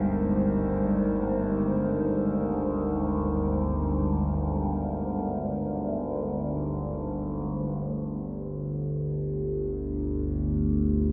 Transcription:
Already playing: G1 D2 G3 G#3 D#4 A#4 C5
7.46 G1 D2 G3
8.76 D4
9.55 G4

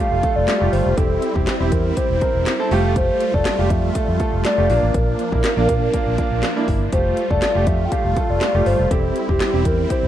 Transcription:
Already playing: G3 A3 F4
0.00 A3 F4 G4 F5
0.12 F1
0.23 A3 F4 A4, kick, closed hi-hat
0.36 F1 D5
0.48 snare, clap, closed hi-hat
0.61 F1 A3 F4 G4
0.72 G1 C5, open hi-hat
0.86 F1
0.97 E1 C4 E4 G4 A4, kick, closed hi-hat
1.22 closed hi-hat
1.35 E1 C4 E4 G4, kick
1.47 snare, clap, closed hi-hat
1.60 E1 C4 E4 G4
1.72 E2 A#4, kick, closed hi-hat
1.97 C4 E4 G4 C5, kick, closed hi-hat
2.10 E1
2.21 C4 E4 A#4, kick, closed hi-hat
2.35 E1
2.46 snare, clap, closed hi-hat
2.59 C4 E4 A4
2.71 F1 G3 A3 F4 G4, open hi-hat
2.96 C5, kick, closed hi-hat
3.21 closed hi-hat
3.34 F1 A3 F4 A4 D5, kick
3.45 snare, clap, closed hi-hat
3.59 F1 A3 F4 G4
3.70 F2 E5, kick, closed hi-hat
3.95 A3 F4 A4, kick, closed hi-hat
4.08 F2
4.20 A3 F4 A4, kick, closed hi-hat
4.33 F1
4.45 D5, snare, clap, closed hi-hat
4.58 F1 A3 F4 G4
4.70 A#1 F3 A#3 D4 F4, open hi-hat
4.83 A1
4.94 A#1 A#4, kick, closed hi-hat
5.19 closed hi-hat
5.32 A#1 A#3 D4 E4, kick
5.44 snare, clap, closed hi-hat
5.57 A#1 A#3 D4 F4
5.69 A#2, kick, closed hi-hat
5.93 A#3 D4 F4, kick, closed hi-hat
6.07 A#1
6.18 A#3 D4 F4, kick, closed hi-hat
6.32 A#1
6.43 snare, clap, closed hi-hat
6.56 A#3 D4 E4
6.68 G1, kick, open hi-hat
6.92 F1 G3 A3 F4 G4 C5, kick, closed hi-hat
7.17 closed hi-hat
7.30 F1 A3 F4 A4 D5, kick
7.42 snare, clap, closed hi-hat
7.55 F1 A3 F4 G4
7.67 F2 E5, kick, closed hi-hat
7.85 G5
7.92 A3 F4 G4 F5, kick, closed hi-hat
8.05 F1
8.16 A3 F4 A4, kick, closed hi-hat
8.30 F1 D5
8.41 snare, clap, closed hi-hat
8.54 F1 A3 F4 G4
8.66 G1 C5, open hi-hat
8.79 F1
8.91 E1 C4 E4 G4 A4, kick, closed hi-hat
9.16 closed hi-hat
9.29 E1 C4 E4 G4, kick
9.40 snare, clap, closed hi-hat
9.53 E1 C4 E4 G4
9.65 E2 A#4, kick, closed hi-hat
9.90 C4 E4 G4 C5, kick, closed hi-hat
10.03 E1

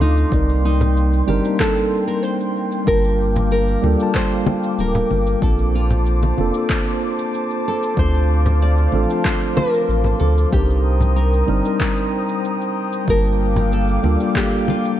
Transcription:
Already playing: A3 C4 D4 F4 A4 F5 C6 D6
0.00 D2 D#4, high conga
0.17 shaker
0.30 C2 G3 C4 D5 G5, kick, shaker
0.34 A#3 D#4 A#4
0.49 shaker
0.65 D#4
0.81 low conga, shaker
0.97 shaker
1.13 shaker
1.26 G1 G3 C4 D4 D#4 G4 A#4, high conga
1.42 G3 C4 D4, shaker
1.47 A#3 D#4
1.60 A4, kick, clap, shaker
1.76 shaker
2.08 A#4, shaker
2.23 C5, shaker
2.40 shaker
2.72 shaker
2.84 G1 G3 A#3 D4 A#4 F5 D6, kick, shaker
2.89 F4 A5
3.04 shaker
3.36 low conga, shaker
3.51 A#4, shaker
3.68 shaker
3.82 D2 G3 A#3 D4 F4 A4, high conga
3.97 G3 A#3 D4, shaker
4.02 F4 A5
4.15 C5, kick, clap, shaker
4.32 shaker
4.46 high conga
4.64 shaker
4.78 D1 A#4, shaker
4.95 low conga, shaker
5.11 G1, high conga
5.27 shaker
5.40 A#1 A#3 C4 D4 A4 C5 A5, kick, shaker
5.45 F4 A4
5.59 shaker
5.75 F4
5.90 low conga, shaker
6.06 shaker
6.22 high conga, shaker
6.38 F1 A#3 C4 D4 F4 A4, high conga
6.52 A#3 C4 D4, shaker
6.56 F4 A4
6.70 kick, clap, shaker
6.87 shaker
7.19 shaker
7.34 shaker
7.51 shaker
7.68 A4
7.83 shaker
7.95 D2 A3 C4 D4 C5 F5, kick, shaker
8.00 F4 A4
8.15 shaker
8.46 low conga, shaker
8.62 D5, shaker
8.78 shaker
8.92 A1 A3 C4 D4 F4 A4, high conga
9.06 F3 C4 D4, shaker
9.11 F4 A5
9.25 C5, kick, clap, shaker
9.42 shaker
9.57 A#4, high conga
9.74 shaker
9.89 A1, shaker
10.04 low conga, shaker
10.20 D2 A4, high conga
10.38 shaker
10.50 C2 G3 C4 D4 G4 G5 A#5 D#6, kick, shaker
10.54 D#4 A#4
10.70 shaker
11.01 low conga, shaker
11.16 A#4, shaker
11.33 shaker
11.47 G1 G3 C4 D4 D#4 A#4, high conga
11.61 G3 C4 D4
11.65 D#4 A#4, shaker
11.80 kick, clap, shaker
11.97 shaker
12.29 shaker
12.45 shaker
12.61 shaker
12.93 shaker
13.05 G1 G3 A#3 D4 F5 D6, kick, shaker
13.09 F4 A#4 A5
13.25 shaker
13.56 low conga, shaker
13.72 A4, shaker
13.89 shaker
14.02 D2 G3 A#3 D4 F4 A4, high conga
14.17 G3 A#3 D4, shaker
14.22 F4 A4
14.35 G4, kick, clap, shaker
14.53 shaker
14.68 F4, high conga
14.85 shaker

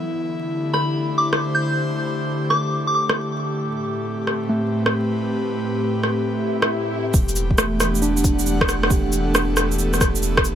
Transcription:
Already playing: E4 A4
0.08 D3
0.23 A3
0.27 G4
0.73 B5, cross-stick
0.97 C5
1.18 D6
1.33 cross-stick
1.55 G6
2.50 D6, cross-stick
2.87 D6
2.95 D6
3.09 cross-stick
3.61 A2
3.82 C4
4.26 B4, cross-stick
4.49 A3
4.86 cross-stick
6.03 cross-stick
6.26 swell
6.62 cross-stick
7.14 E1 E3, kick, shaker
7.24 B3
7.29 cabasa
7.36 cabasa
7.43 D4
7.51 kick
7.58 A3, cross-stick, shaker
7.76 F#5
7.80 cross-stick, cabasa
7.92 A4, shaker
8.02 D4, shaker
8.17 shaker
8.24 kick, cabasa
8.39 shaker
8.46 shaker
8.61 kick, cross-stick
8.69 cross-stick, cabasa
8.83 cross-stick
8.90 G4, kick, shaker
9.13 cabasa
9.35 cross-stick, shaker
9.57 cross-stick, cabasa
9.72 shaker
9.79 shaker
9.94 cross-stick, shaker
10.01 kick, cross-stick, cabasa
10.16 shaker
10.23 cabasa, shaker
10.37 kick, cross-stick
10.45 cabasa

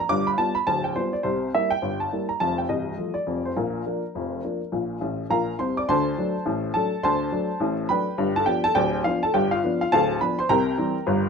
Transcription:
0.00 A#5
0.09 G1 G2 D6
0.27 B5
0.38 G3 B3 F4 A5
0.55 B5
0.67 D1 D2 A5
0.84 G5
0.95 G3 B3 F4 C5
1.13 D5
1.23 C2 C3 C5
1.54 G3 A#3 E4 E5
1.70 G5
1.82 G1 G2
2.00 A5
2.12 G3 A#3 E4
2.29 A#5
2.40 F1 F2 A5
2.58 G5
2.69 C1 C2 D#5
2.97 F3 A3 F4
3.14 D5
3.27 F1 F2
3.45 C5
3.57 A#1 A#2 A#4
3.86 F3 A#3 D4
4.15 F1 F2
4.44 F3 A#3 D4
4.72 A#1 A#2
5.01 A1 A2
5.30 A#1 A#2 A#4 F5 A#5
5.59 C2 C3 C5 C6
5.77 D5 D6
5.89 D2 D3 C5 A5 C6
6.18 F#3 A3 D4
6.46 A1 A2
6.74 F#3 A3 D4 A4 A5
7.03 D2 D3 C5 A5 C6
7.32 F#3 A3 D4
7.60 A1 A2
7.89 F#3 A3 D4 B4 G5 B5
8.18 G1 G2
8.36 A4 A5
8.46 F3 B3 D4 G4 G5
8.64 A4 A5
8.75 D1 D2 G4 D5 G5
9.04 F3 B3 D4 F4 F5
9.23 A4 A5
9.34 G1 G2 G4 G5
9.51 F4 F5
9.63 F3 B3 D4
9.81 F4 F5
9.92 D1 D2 A4 F5 A5
10.21 F3 B3 D4 B4 B5
10.39 C5 C6
10.49 C2 C3 A#4 G5 A#5
10.78 E3 G3 C4
11.06 G1 G2

